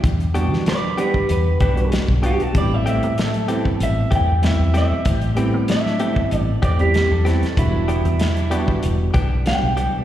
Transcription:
0.04 fingered electric bass E2, kick, closed hi-hat
0.20 closed hi-hat
0.34 clean electric guitar E3 B3 D4 G4, tine electric piano G3 B3 D4 F#4, closed hi-hat
0.52 fingered electric bass E3, snare
0.66 clean electric guitar B4 D5, snare, closed hi-hat
0.96 clean electric guitar E3 B3 D4 G4, tine electric piano G3 B3 D4 F#5, closed hi-hat
1.01 clean electric guitar B4
1.14 kick
1.29 fingered electric bass E2, clean electric guitar B4, closed hi-hat
1.60 fingered electric bass B1, clean electric guitar E3 B3 D4 G4, kick, closed hi-hat
1.75 tine electric piano G3 B3 D4 F#4, closed hi-hat
1.92 snare, closed hi-hat
2.08 fingered electric bass B1, kick
2.21 clean electric guitar E3 B3 D4 G4, tine electric piano G3 B3 D4 F#4, closed hi-hat
2.26 clean electric guitar G4
2.40 clean electric guitar A4, muted fingered electric bass stroke, closed hi-hat
2.53 fingered electric bass A1, tine electric piano G3 B3 C4 E4, string section A3 E4 G4, kick, closed hi-hat
2.58 clean electric guitar D5
2.74 clean electric guitar E5
2.86 clean electric guitar E3 A3 C4 G4 E5, closed hi-hat
3.03 fingered electric bass A2, closed hi-hat
3.17 string section A3 A4, snare, closed hi-hat
3.34 closed hi-hat
3.48 clean electric guitar E3 A3 C4 G4, tine electric piano G3 B3 C4 E4, closed hi-hat
3.65 kick
3.80 fingered electric bass A1, clean electric guitar E5, closed hi-hat
4.11 fingered electric bass E2, clean electric guitar E3 A3 C4 G4, kick, closed hi-hat
4.15 clean electric guitar G5
4.42 tine electric piano G3 B3 C4 E4, snare, closed hi-hat
4.47 clean electric guitar E5
4.59 fingered electric bass E2
4.74 clean electric guitar E3 A3 C4 G4 E5, snare, closed hi-hat
4.92 muted fingered electric bass stroke
5.05 fingered electric bass A1, string section A3 C4 G4, kick, closed hi-hat
5.21 closed hi-hat
5.35 clean electric guitar E3 A3 C4 G4, tine electric piano G3 B3 C4 E4, closed hi-hat
5.54 fingered electric bass A2
5.68 string section A3 D4, clean electric guitar E5, snare, closed hi-hat
5.86 snare
5.99 clean electric guitar E3 A3 C4 G4, tine electric piano G3 B3 C4 E4, closed hi-hat
6.16 kick
6.31 fingered electric bass A1, closed hi-hat
6.37 clean electric guitar D5
6.62 fingered electric bass E2, clean electric guitar E3 A3 C4 G4 D5, kick, closed hi-hat
6.79 tine electric piano G3 B3 C4 E4, clean electric guitar G4, closed hi-hat
6.94 snare, closed hi-hat
7.11 fingered electric bass E2, clean electric guitar A4
7.24 clean electric guitar E3 A3 C4 G4, tine electric piano G3 B3 C4 E4, snare, closed hi-hat
7.42 muted fingered electric bass stroke, snare, closed hi-hat
7.57 fingered electric bass E1, tine electric piano G3 B3 D4 F#4, string section G3 D4 E4, clean electric guitar E4, kick, closed hi-hat
7.88 clean electric guitar E3 B3 D4 G4, closed hi-hat
8.05 fingered electric bass E2, closed hi-hat
8.20 string section G3 D4 E4, snare, closed hi-hat
8.37 closed hi-hat
8.50 clean electric guitar E3 B3 D4 G4, tine electric piano G3 B3 D4 F#4, closed hi-hat
8.68 kick
8.83 fingered electric bass E1, closed hi-hat
9.14 fingered electric bass B1, clean electric guitar E3 B3 D4 G4, kick, closed hi-hat
9.45 tine electric piano F#3 G3 B3 D4, clean electric guitar G5, snare, closed hi-hat
9.63 fingered electric bass B1
9.77 clean electric guitar E3 B3 D4 G4, closed hi-hat
9.94 muted fingered electric bass stroke

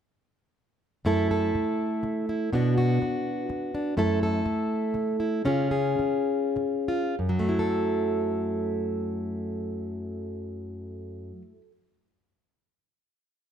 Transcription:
1.05 steel-string acoustic guitar F#2 A3 E4 A4
1.31 steel-string acoustic guitar A4
1.55 muted steel-string acoustic guitar stroke
2.03 muted steel-string acoustic guitar stroke
2.29 steel-string acoustic guitar E4
2.53 steel-string acoustic guitar B2 B3 D4 F#4
2.78 steel-string acoustic guitar F#4
3.02 muted steel-string acoustic guitar stroke
3.49 muted steel-string acoustic guitar stroke
3.75 steel-string acoustic guitar D4
3.97 steel-string acoustic guitar F#2 A3 E4 A4
4.23 steel-string acoustic guitar A4
4.46 muted steel-string acoustic guitar stroke
4.94 muted steel-string acoustic guitar stroke
5.20 steel-string acoustic guitar E4
5.45 steel-string acoustic guitar C#3 C#4 F4 G#4
5.71 steel-string acoustic guitar G#4
5.99 muted steel-string acoustic guitar stroke
6.56 muted steel-string acoustic guitar stroke
6.88 steel-string acoustic guitar F4
7.19 steel-string acoustic guitar F#2
7.29 steel-string acoustic guitar F#3
7.39 steel-string acoustic guitar A3
7.49 steel-string acoustic guitar E4
7.59 steel-string acoustic guitar A4

